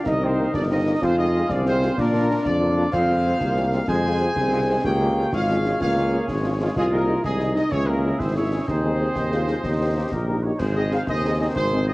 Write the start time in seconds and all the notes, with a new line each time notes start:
0.05 C2 D#4 A#4 D#5, concert bass drum, snare
0.20 A#3 C4 D#4 C5
0.38 A#3 C4 D#4
0.53 G1 D4 D5, concert bass drum, snare
0.69 A#3 C4 D#4 D#5
0.86 A#3 C4 D#4
1.01 F2 C4 F4 G#4 C5 F5, concert bass drum, snare
1.17 G#3 C4 D#4 F4 D#5
1.35 G#3 C4 F4
1.49 C2 C4 D4 D5, concert bass drum, snare
1.64 G#3 C4 F4 C5, snare
1.82 G#3 C4 F4, snare
1.96 A#2 A#3 D4 F4 A#4 D5, concert bass drum, snare
2.13 A#3 D4 F4
2.29 A#3 D4 F4
2.45 F2 D4 F4 D5, concert bass drum, snare
2.62 A#3 D4 F4
2.77 A#3 D4 F4
2.92 F2 C4 F4 G#4 C5 F5, concert bass drum, snare, crash
3.08 G#3 C4 F4
3.25 G#3 C4 F4
3.41 C2 A#3, concert bass drum, snare
3.56 G#3 C4 F4, snare
3.72 G#3 C4 F4, snare
3.88 F2 G#3 G#4 C5 G#5, concert bass drum, snare
4.05 G#3 C4 F4
4.21 G#3 C4 F4
4.36 C2 C4, concert bass drum, snare
4.53 G#3 C4 F4
4.69 G#3 C4 F4
4.84 C#2 A#3 G4 G#4 C#5 G5, concert bass drum, snare
5.01 G#3 C#4 F4
5.17 G#3 C#4 F4
5.32 G#1 G#3 F4 G#4 C#5 F5, concert bass drum, snare
5.49 G#3 C#4 F4, snare
5.65 G#3 C#4 F4, snare
5.79 C#2 A#3 F4 G#4 C#5 F5, concert bass drum, snare
5.97 G#3 C#4 F4
6.13 G#3 C#4 F4
6.28 G#1 G#3, concert bass drum, snare
6.44 G#3 C#4 F4
6.59 F3 G#3 C#4 F4
6.76 C2 G#3 F4 G#4 D#5, concert bass drum, snare, crash
6.91 G#3 A#3 D#4 A#4
7.08 G#3 D#4
7.23 C2 G#3 D#4 G#4 D#5, concert bass drum, snare
7.40 G#3 D#4, snare
7.55 G#3 D#4 D#5, snare
7.71 C#2 C#4 G#4 C#5 E5, concert bass drum, snare
7.86 G#3 A#3 E4 G#4 A#4
8.03 G#3 E4 G#4
8.19 G#1 C4 E4 C5, concert bass drum, snare
8.35 G#3 C#4 E4 G#4 C#5
8.51 G#3 E4 G#4
8.67 D#2 C4 D#4 G#4 C5 D#5, concert bass drum, snare
8.83 G#3 D#4 G#4
9.00 G#3 D#4 G#4
9.15 D#2 D#4, concert bass drum, snare
9.32 G#3 D#4 F4 G#4, snare
9.47 G#3 D#4 G#4, snare
9.63 D#2 D#4 G4 D#5, concert bass drum, snare
9.81 A#3 D#4 G4
9.96 A#3 D#4 G4
10.12 A#1 F4 A#4, concert bass drum, snare
10.29 A#3 D#4 G4
10.43 A#3 D#4 G4 C#5
10.58 G#1 D#3 C4 G#4 C5, concert bass drum, snare, crash
10.75 C4 D#4 G#4 D#5
10.91 C4 D#4 G#4 F5, snare
11.07 D#2 G#4 C5 D#5, concert bass drum, snare
11.25 C4 D#4 G#4
11.39 C4 D#4 G#4 D#5
11.55 G#1 G#4 C5, concert bass drum, snare
11.72 C4 D#4 G#4
11.87 C4 D#4 G#4 D#5